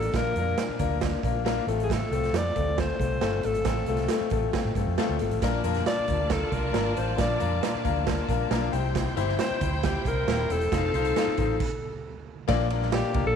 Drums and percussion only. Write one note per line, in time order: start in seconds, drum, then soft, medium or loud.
0.02 closed hi-hat medium
0.14 kick medium
0.14 snare medium
0.14 closed hi-hat medium
0.36 closed hi-hat medium
0.58 snare loud
0.58 closed hi-hat medium
0.79 kick medium
0.79 closed hi-hat medium
1.01 kick medium
1.01 snare loud
1.01 closed hi-hat medium
1.23 kick medium
1.23 closed hi-hat medium
1.46 snare loud
1.46 closed hi-hat medium
1.68 closed hi-hat medium
1.80 closed hi-hat soft
1.90 kick medium
1.90 snare loud
1.90 closed hi-hat medium
2.12 closed hi-hat medium
2.23 snare soft
2.23 closed hi-hat soft
2.34 snare loud
2.34 closed hi-hat medium
2.56 kick medium
2.56 closed hi-hat medium
2.78 kick loud
2.78 snare loud
2.78 closed hi-hat medium
3.00 kick medium
3.00 closed hi-hat medium
3.21 snare loud
3.21 closed hi-hat medium
3.43 closed hi-hat medium
3.55 closed hi-hat medium
3.65 kick medium
3.65 snare loud
3.65 closed hi-hat loud
3.86 closed hi-hat medium
3.97 snare soft
3.97 closed hi-hat soft
4.08 snare loud
4.08 closed hi-hat medium
4.30 kick medium
4.30 closed hi-hat medium
4.53 kick medium
4.53 snare loud
4.53 closed hi-hat medium
4.75 kick medium
4.75 closed hi-hat medium
4.98 snare loud
4.98 closed hi-hat medium
5.19 closed hi-hat medium
5.31 closed hi-hat soft
5.42 kick medium
5.42 snare medium
5.42 closed hi-hat loud
5.64 closed hi-hat medium
5.74 snare soft
5.74 closed hi-hat soft
5.86 snare loud
5.86 closed hi-hat medium
6.08 kick medium
6.08 closed hi-hat medium
6.30 kick medium
6.30 snare loud
6.30 closed hi-hat medium
6.52 kick medium
6.52 closed hi-hat medium
6.74 snare loud
6.74 closed hi-hat medium
6.97 closed hi-hat medium
7.18 kick loud
7.18 snare loud
7.18 closed hi-hat loud
7.40 closed hi-hat medium
7.63 snare loud
7.63 closed hi-hat medium
7.85 kick medium
7.85 closed hi-hat medium
8.07 kick medium
8.07 snare loud
8.07 closed hi-hat medium
8.29 kick medium
8.29 closed hi-hat medium
8.51 snare loud
8.51 closed hi-hat medium
8.73 closed hi-hat medium
8.95 kick loud
8.95 snare loud
8.95 closed hi-hat loud
9.17 closed hi-hat medium
9.29 snare soft
9.39 snare loud
9.39 closed hi-hat medium
9.61 kick medium
9.61 closed hi-hat medium
9.83 kick loud
9.83 snare loud
9.83 closed hi-hat medium
10.05 kick medium
10.05 closed hi-hat medium
10.28 snare loud
10.28 closed hi-hat medium
10.50 closed hi-hat medium
10.61 closed hi-hat medium
10.72 kick loud
10.72 snare loud
10.72 closed hi-hat loud
10.94 closed hi-hat medium
11.05 closed hi-hat medium
11.16 snare loud
11.16 closed hi-hat medium
11.37 kick medium
11.37 closed hi-hat medium
11.60 kick loud
11.60 crash loud
12.48 kick loud
12.48 snare loud
12.48 ride medium
12.70 ride medium
12.82 snare soft
12.92 snare loud
12.92 ride medium
13.14 kick medium
13.14 ride medium